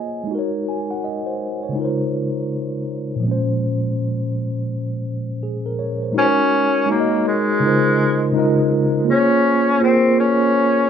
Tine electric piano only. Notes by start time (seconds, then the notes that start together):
Already playing: A#3 F4 G#4 C5 C#5 D#5 G#5
0.24 G#3 D#4
0.31 F#4 A#4
0.39 C#5
0.69 G#5
0.91 F#5
1.04 D#5
1.26 C5
1.63 C#5
1.69 C#3 G#3
1.75 D#4 F4
1.81 A#4 C5
3.16 A#2
3.20 F3 G#3
3.28 C#4 C5
5.43 G#4
5.66 A#4
5.79 C#5
6.03 C5
6.12 G#3 D#4 F#4
6.18 A#4 C5
6.27 C#5
6.86 G#3 D#4
6.90 F#4 A#4 C#5
7.00 D#5
7.60 C#3 G#3 D#4
7.64 F4 A#4 C5
8.32 C#3 G#3 D#4
8.36 F4 A#4 D#5
9.05 A#3 F4
9.09 G#4 C5 C#5
9.78 A#3 F4
9.82 G#4 A#4 C5